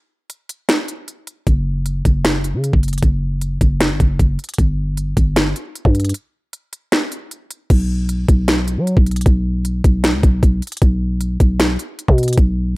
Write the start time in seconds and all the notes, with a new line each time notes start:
0.30 closed hi-hat
0.49 closed hi-hat
0.69 finger snap, snare, closed hi-hat
0.88 closed hi-hat
1.08 closed hi-hat
1.27 closed hi-hat
1.47 F#1, kick, closed hi-hat
1.86 closed hi-hat
2.05 F#1, kick, closed hi-hat
2.25 finger snap, snare, closed hi-hat
2.44 closed hi-hat
2.54 C#3
2.64 closed hi-hat
2.73 F#1, kick
2.83 closed hi-hat, open hi-hat
2.88 closed hi-hat
2.93 closed hi-hat
2.98 closed hi-hat
3.03 F#1, kick, closed hi-hat
3.41 closed hi-hat
3.61 F#1, kick, closed hi-hat
3.81 finger snap, snare, closed hi-hat
3.90 G1
4.00 F#1, kick, closed hi-hat
4.19 F#1, kick, closed hi-hat
4.39 closed hi-hat
4.44 closed hi-hat
4.49 closed hi-hat
4.54 closed hi-hat
4.58 G1, kick, closed hi-hat
4.97 closed hi-hat
5.17 G1, kick, closed hi-hat
5.36 finger snap, snare, closed hi-hat
5.56 closed hi-hat
5.75 closed hi-hat
5.85 G2, kick
5.95 closed hi-hat, open hi-hat
6.00 closed hi-hat
6.05 closed hi-hat
6.09 closed hi-hat
6.14 closed hi-hat
6.53 closed hi-hat
6.73 closed hi-hat
6.92 finger snap, snare, closed hi-hat
7.12 closed hi-hat
7.31 closed hi-hat
7.51 closed hi-hat
7.70 B1, kick, closed hi-hat, crash
8.09 closed hi-hat
8.28 B1, kick, closed hi-hat
8.48 finger snap, snare, closed hi-hat
8.68 closed hi-hat
8.77 F#3
8.87 closed hi-hat
8.97 B1, kick
9.06 closed hi-hat, open hi-hat
9.11 closed hi-hat
9.16 closed hi-hat
9.21 closed hi-hat
9.26 B1, kick, closed hi-hat
9.65 closed hi-hat
9.84 B1, kick, closed hi-hat
10.04 finger snap, snare, closed hi-hat
10.14 C#2
10.23 B1, kick, closed hi-hat
10.43 B1, kick, closed hi-hat
10.62 closed hi-hat
10.67 closed hi-hat
10.72 closed hi-hat
10.77 closed hi-hat
10.82 B1, kick, closed hi-hat
11.21 closed hi-hat
11.40 B1, kick, closed hi-hat
11.60 finger snap, snare, closed hi-hat
11.79 closed hi-hat
11.99 closed hi-hat
12.08 B2, kick
12.18 closed hi-hat, open hi-hat
12.23 closed hi-hat
12.28 closed hi-hat
12.33 closed hi-hat
12.38 B1, kick, closed hi-hat